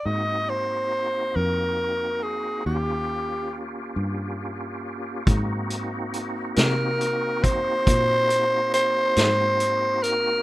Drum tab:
HH |------------|xxxxxxxxxxxx|
SD |------------|---o-----o--|
BD |------------|o----oo-----|